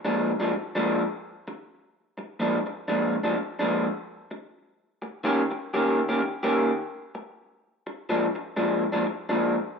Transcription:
0.05 clean electric guitar A#2 F3 G#3 D4
0.40 clean electric guitar A#2 F3 G#3 D4
0.54 muted clean electric guitar stroke
0.75 clean electric guitar A#2 F3 G#3 D4
1.48 muted clean electric guitar stroke
2.18 muted clean electric guitar stroke
2.40 clean electric guitar A#2 F3 G#3 D4
2.66 muted clean electric guitar stroke
2.88 clean electric guitar A#2 F3 G#3 D4
3.23 clean electric guitar A#2 F3 G#3 D4
3.37 muted clean electric guitar stroke
3.59 clean electric guitar A#2 F3 G#3 D4
4.31 muted clean electric guitar stroke
5.02 muted clean electric guitar stroke
5.24 clean electric guitar D#3 A#3 C#4 G4
5.51 muted clean electric guitar stroke
5.74 clean electric guitar D#3 A#3 C#4 G4
6.09 clean electric guitar D#3 A#3 C#4 G4
6.22 muted clean electric guitar stroke
6.43 clean electric guitar D#3 A#3 C#4 G4
7.15 muted clean electric guitar stroke
7.87 muted clean electric guitar stroke
8.09 clean electric guitar A#2 F3 G#3 D4
8.35 muted clean electric guitar stroke
8.57 clean electric guitar A#2 F3 G#3 D4
8.92 clean electric guitar A#2 F3 G#3 D4
9.06 muted clean electric guitar stroke
9.29 clean electric guitar A#2 F3 G#3 D4

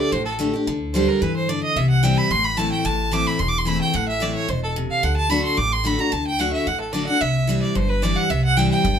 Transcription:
Already playing: steel-string acoustic guitar D3 A3 D4 G4, fiddle D5
0.12 upright bass A1, steel-string acoustic guitar A2, fiddle C5
0.25 fiddle A4
0.39 steel-string acoustic guitar D3 A3 D4 G4
0.54 steel-string acoustic guitar D4 G4
0.67 upright bass D2, steel-string acoustic guitar D3
0.94 steel-string acoustic guitar D3 G3 B3 G4, fiddle C5
1.08 fiddle A#4
1.21 upright bass G2, steel-string acoustic guitar E3, fiddle B4
1.36 fiddle C5
1.49 steel-string acoustic guitar D3, fiddle D5
1.63 fiddle D#5
1.76 upright bass C2, steel-string acoustic guitar C3, fiddle E5
1.90 fiddle F#5
2.03 steel-string acoustic guitar E3 G3 C4 E4, fiddle G5
2.17 fiddle B5
2.31 upright bass A1, steel-string acoustic guitar A2, fiddle C6
2.44 fiddle B5
2.57 steel-string acoustic guitar E3 A3 C4 E4, fiddle A5
2.72 fiddle G5
2.85 upright bass A1, steel-string acoustic guitar A2, fiddle A5
3.11 steel-string acoustic guitar E3 A3 C4 E4, fiddle D6
3.27 fiddle B5
3.39 upright bass E1, steel-string acoustic guitar E2, fiddle C6
3.48 fiddle D6
3.58 fiddle C6
3.65 steel-string acoustic guitar E3 A3 C4 E4, fiddle B5
3.81 fiddle G5
3.94 upright bass A1, steel-string acoustic guitar A2, fiddle F#5
4.08 fiddle E5
4.20 steel-string acoustic guitar E3 A3 C4 E4, fiddle D5
4.35 fiddle C#5
4.48 upright bass E1, steel-string acoustic guitar B2, fiddle C5
4.63 fiddle A4
4.76 steel-string acoustic guitar C3
4.91 fiddle F5
5.03 upright bass D2, steel-string acoustic guitar D3, fiddle F#5
5.17 fiddle A5
5.30 steel-string acoustic guitar D3 A3 D4 F#4, fiddle B5
5.44 fiddle C6
5.57 upright bass A1, steel-string acoustic guitar A2, fiddle D6
5.72 fiddle C6
5.84 steel-string acoustic guitar D3 A3 D4 F#4, fiddle B5
5.99 steel-string acoustic guitar D4 F#4, fiddle A#5
6.12 upright bass D2, steel-string acoustic guitar D3, fiddle A5
6.27 fiddle G5
6.39 steel-string acoustic guitar D3 A3 D4 F#4, fiddle F#5
6.53 fiddle E5
6.67 upright bass A1, steel-string acoustic guitar A2, fiddle F#5
6.81 fiddle A4
6.92 steel-string acoustic guitar D3 A3 D4 F#4, fiddle D5
7.07 steel-string acoustic guitar D4 F#4, fiddle F#5
7.21 upright bass C2, steel-string acoustic guitar C3, fiddle E5
7.47 steel-string acoustic guitar E3 G3 C4 E4
7.62 fiddle D5
7.75 upright bass G1, steel-string acoustic guitar G2, fiddle C5
7.89 fiddle B4
8.02 steel-string acoustic guitar E3 G3 C4 E4, fiddle D5
8.16 fiddle F#5
8.30 upright bass C2, steel-string acoustic guitar C3, fiddle E5
8.45 fiddle F#5
8.57 steel-string acoustic guitar E3 G3 C4 E4, fiddle G5
8.71 fiddle G5
8.84 upright bass G1, steel-string acoustic guitar G2

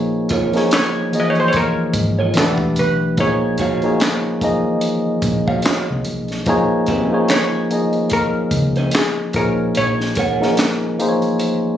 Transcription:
Already playing: fingered electric bass A#1, tine electric piano F3 A#3 D#4 G#4 C#5
0.29 clean electric guitar F4 A#4 C#5, kick, closed hi-hat
0.53 tine electric piano F3 A#3 D#4 G#4 C#5, snare, closed hi-hat
0.71 steel pan C#5, snare, clap, closed hi-hat
1.12 tine electric piano E3 A#3 D#4 G#4 D#5, closed hi-hat
1.18 tine electric piano F3, steel pan D#5
1.30 steel pan C#5
1.35 closed hi-hat
1.40 steel pan C5
1.48 steel pan C#5
1.53 steel pan A#4, kick, closed hi-hat
1.94 fingered electric bass G#1, kick, closed hi-hat
2.19 clean electric guitar F4 A#4 C#5
2.34 tine electric piano E3 A3 D4 F#4, clean electric guitar G4 D5, snare, closed hi-hat
2.38 fingered electric bass E1, steel pan A4, tine electric piano B4, clean electric guitar F#5, clap
2.44 tine electric piano G4
2.58 kick
2.76 fingered electric bass B1, steel pan B4, closed hi-hat
3.17 fingered electric bass A#1, tine electric piano F3 A#3 D#4 G#4 C#5, steel pan C#5, kick, closed hi-hat
3.58 clean electric guitar F#4 C#5 F5, kick, closed hi-hat
3.82 tine electric piano F3 A#3 D#4 G#4, closed hi-hat
3.86 tine electric piano C#5
4.00 snare, clap, closed hi-hat
4.41 tine electric piano F3 A#3 D#4 G#4 D#5, kick, closed hi-hat
4.81 closed hi-hat
5.22 fingered electric bass A#1, kick, closed hi-hat
5.48 clean electric guitar F#4 C#5 F5, kick
5.62 clean electric guitar F#4 C#5, snare, closed hi-hat
5.67 clean electric guitar F5, clap
5.90 fingered electric bass C2
6.04 fingered electric bass B1, closed hi-hat
6.28 snare, closed hi-hat
6.46 fingered electric bass A#1, tine electric piano F3 A#3 D#4 G#4, kick, closed hi-hat
6.50 tine electric piano C#5
6.86 clean electric guitar C4 G4 B4, kick, closed hi-hat
7.04 clean electric guitar C#4 G#4 C5
7.11 tine electric piano F3 A#3 D#4 G#4 C#5
7.28 steel pan C#5, snare, clap, closed hi-hat
7.70 tine electric piano F3 A#3 D#4 G#4 D#5, closed hi-hat
7.93 closed hi-hat
8.10 steel pan A#4, kick, closed hi-hat
8.51 fingered electric bass C#2, kick, closed hi-hat
8.76 clean electric guitar C#4 G#4 C5, closed hi-hat
8.91 steel pan G#4, snare, closed hi-hat
8.96 clap
9.33 fingered electric bass A#1, tine electric piano F3 A#3 D#4 G#4, steel pan A#4, kick, closed hi-hat
9.38 tine electric piano C#5
9.75 fingered electric bass A#1, steel pan C#5, closed hi-hat
10.00 snare
10.15 clean electric guitar A#4 C#5, kick, closed hi-hat
10.19 clean electric guitar F#5
10.40 tine electric piano F3 A#3 D#4 G#4 A#4, snare
10.57 snare, clap, closed hi-hat
10.98 tine electric piano F3 A#3 D#4 G#4 C5, closed hi-hat
11.09 tine electric piano C#5
11.22 closed hi-hat
11.39 closed hi-hat

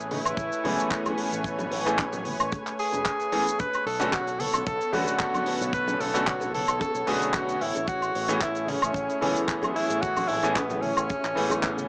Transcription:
Already playing: fingered electric bass A1, analog synth pad A3 B4 C#5 G#5
0.00 shaker
0.11 tenor saxophone E4, open hi-hat, high bongo, high conga
0.25 fingered electric bass A1, closed hi-hat, high woodblock, shaker
0.37 fingered electric bass A1, kick, closed hi-hat, shaker
0.52 closed hi-hat, shaker
0.64 fingered electric bass C#2, grand piano E3 A3 B3 C#4 G#4, open hi-hat, high bongo, low conga
0.79 closed hi-hat, shaker
0.91 kick, clap, closed hi-hat, shaker
1.06 closed hi-hat, high bongo, low conga, high woodblock, shaker
1.18 open hi-hat
1.32 fingered electric bass A1, closed hi-hat, shaker
1.44 kick, closed hi-hat, shaker
1.58 closed hi-hat, high bongo, low conga, shaker
1.71 fingered electric bass A1, open hi-hat
1.86 grand piano E3 A3 B3 C#4 G#4, closed hi-hat, shaker
1.98 kick, clap, closed hi-hat, high bongo, shaker
2.13 closed hi-hat, low conga, shaker
2.25 open hi-hat, high conga
2.40 fingered electric bass A1, closed hi-hat, high woodblock, shaker
2.51 kick, closed hi-hat, high bongo, shaker
2.67 clap, closed hi-hat, shaker
2.79 tenor saxophone G#4, open hi-hat
2.92 fingered electric bass E1, closed hi-hat, high bongo, shaker
3.05 kick, clap, closed hi-hat, shaker
3.20 closed hi-hat, shaker
3.32 grand piano E3 A3 B3 C#4 G#4, open hi-hat
3.47 closed hi-hat, high bongo, shaker
3.58 analog synth pad B3 A4 C#5, tenor saxophone B4, kick, closed hi-hat, high bongo, shaker
3.73 closed hi-hat, high woodblock, shaker
3.86 fingered electric bass B1, tenor saxophone A4, open hi-hat
4.00 grand piano D3 A3 B3 C#4 F#4, closed hi-hat, high bongo, shaker
4.13 tenor saxophone F#4, kick, clap, closed hi-hat, shaker
4.27 closed hi-hat, shaker
4.39 tenor saxophone A4, open hi-hat, high conga
4.53 fingered electric bass B1, closed hi-hat, high bongo, high woodblock, shaker
4.66 tenor saxophone A4, kick, closed hi-hat, shaker
4.81 closed hi-hat, shaker
4.92 fingered electric bass E2, grand piano D3 A3 B3 C#4 F#4, tenor saxophone F#4, open hi-hat, high bongo, low conga
5.08 closed hi-hat, shaker
5.19 kick, clap, closed hi-hat, shaker
5.34 closed hi-hat, low conga, high woodblock, shaker
5.46 open hi-hat, high bongo
5.61 fingered electric bass B1, closed hi-hat, shaker
5.73 tenor saxophone B4, kick, closed hi-hat, shaker
5.87 closed hi-hat, high bongo, low conga, shaker
6.00 fingered electric bass B1, tenor saxophone A4, open hi-hat
6.14 grand piano D3 A3 B3 C#4 F#4, closed hi-hat, shaker
6.27 tenor saxophone F#4, kick, clap, closed hi-hat, shaker
6.40 closed hi-hat, high bongo, low conga, shaker
6.54 tenor saxophone A4, open hi-hat, high conga
6.68 fingered electric bass B1, closed hi-hat, high woodblock, shaker
6.80 tenor saxophone A4, kick, closed hi-hat, high bongo, shaker
6.95 fingered electric bass B1, closed hi-hat, shaker
7.07 fingered electric bass B1, grand piano D3 A3 B3 C#4 F#4, tenor saxophone G#4, open hi-hat
7.22 closed hi-hat, shaker
7.34 tenor saxophone F#4, kick, clap, closed hi-hat, high bongo, shaker
7.49 closed hi-hat, shaker
7.61 fingered electric bass A1, analog synth pad A3 E4 G#4, tenor saxophone E4, open hi-hat
7.75 fingered electric bass A1, closed hi-hat, high bongo, shaker
7.88 tenor saxophone F#4, kick, closed hi-hat, shaker
8.02 closed hi-hat, high woodblock, shaker
8.15 fingered electric bass A1, open hi-hat
8.28 grand piano E3 A3 B3 C#4 G#4, closed hi-hat, high bongo, shaker
8.41 tenor saxophone E4, kick, clap, closed hi-hat, shaker
8.55 closed hi-hat, shaker
8.67 tenor saxophone C#4, open hi-hat, high bongo, high conga
8.82 fingered electric bass A1, closed hi-hat, high woodblock, shaker
8.94 fingered electric bass A1, kick, closed hi-hat, shaker
9.10 closed hi-hat, shaker
9.21 fingered electric bass C#2, grand piano E3 A3 B3 C#4 G#4, open hi-hat, high bongo, low conga
9.36 closed hi-hat, shaker
9.48 kick, clap, closed hi-hat, shaker
9.62 closed hi-hat, high bongo, low conga, high woodblock, shaker
9.75 tenor saxophone E4, open hi-hat
9.90 fingered electric bass A1, closed hi-hat, shaker
10.01 tenor saxophone F#4, kick, closed hi-hat, shaker
10.16 open hi-hat, high bongo, low conga, high woodblock, shaker
10.28 fingered electric bass A1, tenor saxophone E4, open hi-hat
10.43 grand piano E3 A3 B3 C#4 G#4, closed hi-hat, shaker
10.54 tenor saxophone B3, kick, clap, closed hi-hat, high bongo, shaker
10.70 closed hi-hat, low conga, shaker
10.81 tenor saxophone C#4, open hi-hat, high conga
10.97 fingered electric bass A1, closed hi-hat, high woodblock, shaker
11.09 kick, closed hi-hat, high bongo, shaker
11.24 fingered electric bass A1, clap, closed hi-hat, shaker
11.35 fingered electric bass A1, grand piano E3 A3 B3 C#4 G#4, open hi-hat
11.50 closed hi-hat, high bongo, low conga, high woodblock, shaker
11.63 kick, clap, closed hi-hat, shaker
11.78 closed hi-hat, high conga, shaker

